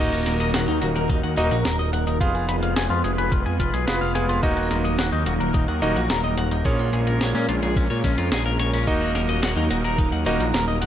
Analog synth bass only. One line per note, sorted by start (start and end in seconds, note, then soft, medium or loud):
0.00 0.11 D#1 loud
0.12 0.25 D#1 medium
0.26 0.39 D#1 medium
0.40 0.53 D#1 medium
0.54 0.67 D#1 loud
0.68 0.81 D#2 medium
0.82 0.95 D#1 medium
0.96 1.09 D#1 medium
1.09 1.22 D#1 loud
1.24 1.36 D#2 medium
1.38 1.50 D#1 loud
1.52 1.64 A#1 medium
1.66 1.78 D#1 loud
1.79 1.92 D#1 medium
1.93 2.06 D#1 medium
2.07 2.20 D#1 medium
2.21 2.34 F1 loud
2.35 2.47 F1 medium
2.48 2.61 F1 medium
2.62 2.75 F1 medium
2.77 2.89 F1 loud
2.90 3.03 F2 medium
3.04 3.17 F1 medium
3.18 3.31 F1 medium
3.32 3.45 F1 loud
3.46 3.59 F2 medium
3.60 3.72 F1 medium
3.74 3.86 B1 medium
3.87 4.00 F1 loud
4.01 4.14 F1 medium
4.15 4.28 F1 loud
4.29 4.42 F1 medium
4.43 4.56 D#1 loud
4.57 4.70 D#1 medium
4.71 4.84 D#1 medium
4.85 4.98 D#1 medium
4.99 5.11 D#1 loud
5.12 5.25 D#2 medium
5.26 5.39 D#1 loud
5.40 5.53 D#1 medium
5.54 5.67 D#1 loud
5.68 5.81 D#2 medium
5.82 5.95 D#1 loud
5.96 6.09 A#1 medium
6.10 6.22 D#1 loud
6.24 6.36 D#1 medium
6.38 6.50 D#1 medium
6.51 6.64 D#1 medium
6.65 6.78 A#1 loud
6.79 6.92 A#1 medium
6.93 7.06 A#1 loud
7.07 7.20 A#1 medium
7.21 7.34 A#1 loud
7.35 7.47 A#2 medium
7.49 7.61 A#1 loud
7.63 7.75 A#1 medium
7.76 7.89 A#1 loud
7.90 8.03 A#2 medium
8.04 8.17 A#1 medium
8.18 8.31 F2 medium
8.32 8.45 A#1 medium
8.46 8.59 A#1 medium
8.60 8.72 A#1 medium
8.73 8.86 A#1 medium
8.87 9.00 D#1 loud
9.01 9.14 D#1 medium
9.15 9.28 D#1 medium
9.29 9.42 D#1 medium
9.43 9.56 D#1 loud
9.57 9.69 D#2 medium
9.71 9.83 D#1 medium
9.84 9.97 D#1 medium
9.98 10.11 D#1 loud
10.12 10.25 D#2 medium
10.26 10.39 D#1 loud
10.40 10.53 A#1 medium
10.54 10.67 D#1 loud
10.68 10.81 D#1 medium
10.82 10.86 D#1 medium